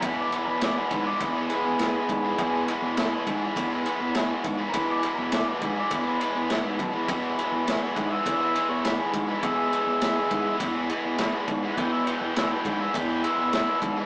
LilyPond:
<<
  \new Staff \with { instrumentName = "Transistor combo organ" } { \time 4/4 \key e \major \tempo 4 = 102 b'16 d''16 b'16 <ais' b'>16 d''16 b'16 b'16 d''16 b'8 <b gis'>4.~ | <b gis'>8 r2. r8 | <ais' b'>16 d''16 b'16 <ais' b'>16 d''16 b'16 b'16 d''16 b'8 b'4.~ | b'8 r4 fis''16 <dis'' e''>4 cis''16 b'16 gis'8 b'16 |
<gis e'>2 r2 | <fis'' g''>16 e''16 g''16 <fis'' g''>16 e''16 g''16 g''16 e''16 g''8 e''4 r8 | }
  \new Staff \with { instrumentName = "Overdriven electric guitar" } { \clef bass \time 4/4 \key e \major <e, b, e gis b gis'>8 <e gis b gis'>8 <e, b, e gis b gis'>16 <e gis b gis'>16 <e gis b gis'>16 <e gis b gis'>8 <e gis b gis'>16 <e gis b gis'>8 <e, b, e gis b gis'>16 <e gis b gis'>8 <e gis b gis'>16 | <e, b, e gis b gis'>8 <e gis b gis'>8 <e, b, e gis b gis'>16 <e gis b gis'>16 <e gis b gis'>16 <e gis b gis'>8 <e gis b gis'>16 <e gis b gis'>8 <e, b, e gis b gis'>16 <e gis b gis'>8 <e gis b gis'>16 | <e, b, e gis b gis'>8 <e gis b gis'>8 <e, b, e gis b gis'>16 <e gis b gis'>16 <e gis b gis'>16 <e gis b gis'>8 <e gis b gis'>16 <e gis b gis'>8 <e, b, e gis b gis'>16 <e gis b gis'>8 <e gis b gis'>16 | <e, b, e gis b gis'>8 <e gis b gis'>8 <e, b, e gis b gis'>16 <e gis b gis'>16 <e gis b gis'>16 <e gis b gis'>8 <e gis b gis'>16 <e gis b gis'>8 <e, b, e gis b gis'>16 <e gis b gis'>8 <e gis b gis'>16 |
<e, b, e gis b gis'>8 <e gis b gis'>8 <e, b, e gis b gis'>16 <e gis b gis'>16 <e gis b gis'>16 <e gis b gis'>8 <e gis b gis'>16 <e gis b gis'>8 <e, b, e gis b gis'>16 <e gis b gis'>8 <e gis b gis'>16 | <e, b, e gis b gis'>8 <e gis b gis'>8 <e, b, e gis b gis'>16 <e gis b gis'>16 <e gis b gis'>16 <e gis b gis'>8 <e gis b gis'>16 <e gis b gis'>8 <e, b, e gis b gis'>16 <e gis b gis'>8 <e gis b gis'>16 | }
  \new Staff \with { instrumentName = "Picked electric bass" } { \clef bass \time 4/4 \key e \major e,8 r16 e,8 r16 gis,16 r16 e,8 r16 e,8 r16 gis,16 r16 | e,8 r16 e,8 r16 gis,16 r16 e,8 r16 e,8 r16 gis,16 r16 | e,8 r16 e,8 r16 gis,16 r16 e,8 r16 e,8 gis,16 fis,16 e,16 | e,8 r16 e,8 r16 gis,16 r16 e,8 r16 e,8 r16 gis,16 r16 |
e,8 r16 e,8 r16 gis,16 r16 e,8 r16 e,8 r16 gis,16 r16 | e,8 r16 e,8 r16 gis,16 r16 e,8 r16 e,8 r16 gis,16 r16 | }
  \new DrumStaff \with { instrumentName = "Drums" } \drummode { \time 4/4 <bd cymr>8 cymr8 <cymr sn>8 <bd cymr>8 <bd cymr>8 cymr8 <cymr sn>8 <bd cymr>8 | <bd cymr>8 cymr8 <cymr sn>8 <bd cymr>8 <bd cymr>8 cymr8 <cymr sn>8 <bd cymr>8 | <bd cymr>8 cymr8 <cymr sn>8 <bd cymr>8 <bd cymr>8 cymr8 <cymr sn>8 <bd cymr>8 | <bd cymr>8 cymr8 <cymr sn>8 <bd cymr>8 <bd cymr>8 cymr8 <cymr sn>8 <bd cymr>8 |
<bd cymr>8 cymr8 <cymr sn>8 <bd cymr>8 <bd cymr>8 cymr8 <cymr sn>8 <bd cymr>8 | <bd cymr>8 cymr8 <cymr sn>8 <bd cymr>8 <bd cymr>8 cymr8 <cymr sn>8 <bd cymr>8 | }
>>